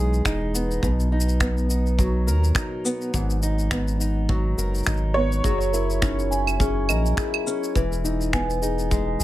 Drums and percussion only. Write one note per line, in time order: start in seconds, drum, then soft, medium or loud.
0.14 shaker soft
0.25 finger snap loud
0.25 kick medium
0.25 shaker soft
0.55 shaker medium
0.71 shaker soft
0.83 kick medium
0.83 shaker soft
1.00 shaker soft
1.20 shaker medium
1.29 shaker soft
1.40 finger snap medium
1.40 kick loud
1.40 shaker soft
1.58 shaker soft
1.70 shaker medium
1.86 shaker soft
1.99 kick loud
1.99 shaker soft
2.28 shaker medium
2.44 shaker soft
2.55 finger snap medium
2.55 kick loud
2.55 shaker soft
2.85 shaker medium
3.01 shaker soft
3.14 kick loud
3.14 shaker soft
3.30 shaker soft
3.43 shaker medium
3.59 shaker soft
3.71 finger snap medium
3.71 kick medium
3.71 shaker soft
3.88 shaker soft
4.01 shaker medium
4.29 kick loud
4.58 shaker medium
4.75 shaker soft
4.78 shaker soft
4.83 finger snap medium
4.83 shaker soft
4.87 kick loud
4.87 shaker soft
4.93 shaker soft
4.97 shaker soft
5.32 shaker soft
5.44 kick medium
5.44 shaker soft
5.61 shaker soft
5.74 shaker medium
5.90 shaker soft
6.02 finger snap medium
6.02 kick loud
6.02 shaker soft
6.19 shaker soft
6.32 shaker medium
6.47 claves medium
6.47 shaker soft
6.60 kick medium
6.60 shaker soft
6.89 claves medium
6.89 shaker medium
7.06 shaker soft
7.17 finger snap medium
7.17 kick loud
7.17 shaker soft
7.34 claves medium
7.47 shaker medium
7.64 shaker soft
7.75 kick loud
7.75 shaker soft
7.92 shaker soft
8.05 shaker medium
8.21 shaker soft
8.33 finger snap medium
8.33 kick medium
8.33 shaker soft
8.50 shaker soft
8.63 shaker medium
8.79 shaker soft
8.91 kick medium
8.91 shaker soft
9.20 shaker medium